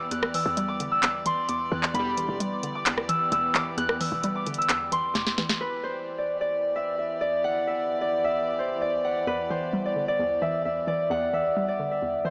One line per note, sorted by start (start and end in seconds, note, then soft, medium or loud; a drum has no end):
0.00 0.10 E2 medium
0.00 0.12 D3 medium
0.00 0.33 E3 medium
0.00 1.90 E3 medium
0.00 1.90 B3 medium
0.00 1.90 G4 medium
0.00 5.57 D5 medium
0.00 0.68 D6 medium
0.00 0.34 E6 medium
0.11 1.01 E2 medium
0.11 1.17 F#6 loud
0.11 closed hi-hat medium
0.23 cross-stick loud
0.34 1.24 E3 medium
0.34 0.91 E6 medium
0.34 open hi-hat medium
0.46 1.23 E2 loud
0.57 1.71 G3 loud
0.57 closed hi-hat medium
0.68 1.48 D6 medium
0.80 1.95 D3 medium
0.80 closed hi-hat medium
0.92 2.05 E6 medium
1.03 1.48 E2 medium
1.03 clap loud
1.03 closed hi-hat medium
1.26 1.70 E3 medium
1.26 2.00 C6 medium
1.26 closed hi-hat medium
1.49 1.93 E2 medium
1.49 2.52 D6 medium
1.49 closed hi-hat medium
1.72 1.94 E2 loud
1.72 1.94 E3 medium
1.72 2.78 F#6 medium
1.83 clap medium
1.94 2.27 E1 loud
1.94 2.85 E2 loud
1.94 2.38 E2 medium
1.94 2.38 D3 medium
1.94 5.57 E3 medium
1.94 2.38 G3 loud
1.94 5.57 B3 medium
1.94 5.57 G4 medium
1.94 2.23 B5 loud
1.94 closed hi-hat medium
2.17 3.08 E3 medium
2.17 3.48 C6 medium
2.17 closed hi-hat medium
2.29 2.84 E1 loud
2.40 3.55 G3 medium
2.40 closed hi-hat medium
2.53 2.75 D6 medium
2.63 3.78 D3 medium
2.63 closed hi-hat medium
2.75 3.54 D6 medium
2.86 3.31 E2 medium
2.86 clap loud
2.86 closed hi-hat medium
2.98 cross-stick medium
3.09 3.53 E3 medium
3.09 3.32 E6 medium
3.09 closed hi-hat medium
3.32 4.09 E1 loud
3.32 3.76 E2 medium
3.32 4.00 E6 medium
3.32 closed hi-hat medium
3.54 3.99 E3 medium
3.54 4.35 D6 medium
3.54 clap loud
3.77 4.68 E2 loud
3.77 4.84 F#6 loud
3.77 closed hi-hat medium
3.89 cross-stick loud
4.01 4.91 E3 medium
4.01 4.58 E6 medium
4.01 open hi-hat medium
4.12 5.11 E1 loud
4.23 5.38 G3 loud
4.23 closed hi-hat medium
4.35 5.13 D6 medium
4.46 5.61 D3 medium
4.46 closed hi-hat medium
4.54 closed hi-hat medium
4.58 5.72 E6 medium
4.58 closed hi-hat medium
4.69 5.14 E2 medium
4.69 clap loud
4.69 closed hi-hat medium
4.92 5.37 E3 medium
4.92 5.67 C6 medium
4.92 closed hi-hat medium
5.14 5.37 E1 loud
5.14 5.61 E2 medium
5.14 6.36 D6 medium
5.14 snare medium
5.14 closed hi-hat medium
5.27 snare medium
5.38 5.61 E3 medium
5.38 snare loud
5.49 snare loud
5.61 12.30 E2 medium
5.61 12.30 E3 medium
5.61 12.30 G4 medium
5.61 5.90 B4 loud
5.61 12.30 D5 medium
5.84 7.81 C5 medium
6.18 6.40 D5 medium
6.41 7.20 D5 medium
6.76 6.98 E5 medium
6.99 7.67 E5 medium
7.21 8.01 D5 medium
7.44 9.04 F#5 loud
7.67 8.24 E5 medium
8.01 8.81 D5 medium
8.24 9.97 E5 medium
8.59 9.33 C5 medium
8.81 9.85 D5 medium
9.04 10.65 F#5 medium
9.27 10.18 E2 medium
9.27 9.56 B4 loud
9.50 10.41 E3 medium
9.50 11.48 C5 medium
9.73 10.88 G3 medium
9.85 10.08 D5 medium
9.96 11.11 D3 medium
10.08 10.87 D5 medium
10.19 10.64 E2 medium
10.42 10.86 E3 medium
10.42 10.65 E5 medium
10.65 11.09 E2 medium
10.65 11.33 E5 medium
10.87 11.32 E3 medium
10.87 11.68 D5 medium
11.10 12.01 E2 loud
11.10 12.30 F#5 loud
11.33 12.23 E3 medium
11.33 11.91 E5 medium
11.57 12.30 G3 loud
11.68 12.30 D5 medium
11.80 12.30 D3 medium
11.91 12.30 E5 medium
12.02 12.30 E2 medium
12.25 12.30 E3 medium
12.25 12.30 C5 medium